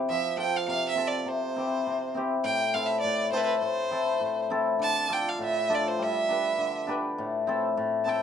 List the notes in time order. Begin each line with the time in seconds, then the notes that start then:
Already playing: C3
0.09 F3 E5
0.37 C4 F4 A4 G5
0.57 F5
0.68 C3 F5
0.89 E5
0.95 C4 F4 A4
1.07 D5
1.18 D5
1.26 C3 C5
1.56 C4 E4 G4
1.87 C3
2.15 C4 E4 G4
2.44 A2 G5
2.74 C4 E4 A4 F5
2.86 E5
3.00 D5
3.04 A2
3.31 C4 E4 A4 C5
3.36 B4 C5
3.44 B4
3.59 A2 C5
3.91 C4 E4 A4
4.21 A2
4.50 C4 E4 A4
4.79 D3 A5
5.08 D4 F4 A4
5.13 G5
5.29 F5
5.39 A2
5.45 E5
5.69 D4 F4 A4
5.75 D5
5.88 C5
5.99 G3 E5
6.29 D4 G4 B4
6.58 D3
6.87 D4 G4 B4
7.18 A2
7.47 C4 E4 A4
7.77 A2
8.04 C4 E4 A4 A5
8.09 G5